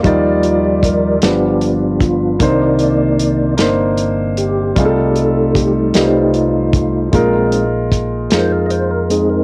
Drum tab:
HH |xxxxxx|xxxxxx|xxxxxx|xxxxxx|
SD |---o--|---o--|---o--|---o--|
BD |o-o--o|o-----|o-o--o|o-o---|